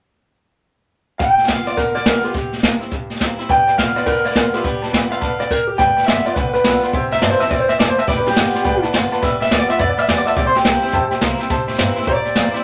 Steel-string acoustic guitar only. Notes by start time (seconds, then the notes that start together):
1.20 G3
1.48 G3 B3 F4
1.66 B3 F4
1.77 D3
2.06 G3 B3 F4
2.23 B3 F4
2.34 C3
2.62 E3 A#3 C4 E4
2.80 C4 E4
2.91 G2
3.20 E3 A#3 C4 E4
3.39 C4 E4
3.49 G3
3.77 G3 B3 F4
3.96 B3 F4
4.08 D3
4.35 G3 B3 F4
4.54 B3 F4
4.65 G3
4.93 G3 B3 F4
5.11 B3 F4
5.22 D3
5.80 G3
6.07 G3 B3 F4
6.26 B3 F4
6.37 D3
6.64 G3 B3 F4
6.83 B3 F4
6.94 C3
7.21 E3 A#3 C4 E4
7.40 C4 E4
7.51 E3
7.79 F3
8.07 G3
8.36 G3 B3 F4
8.54 B3 F4
8.64 D3
8.93 G3 B3 F4
9.11 B3 F4
9.23 G3
9.51 G3 B3 F4
9.69 B3 F4
9.79 D3
10.07 G3 B3 F4
10.25 B3 F4
10.36 C3
10.64 E3 A#3 C4 E4
10.82 C4 E4
10.93 G2
11.21 E3 A#3 C4 E4
11.39 C4 E4
11.50 C3
11.78 E3 A#3 C4 E4
11.96 C4 E4
12.07 G2
12.36 E3 A#3 C4 E4
12.53 C4 E4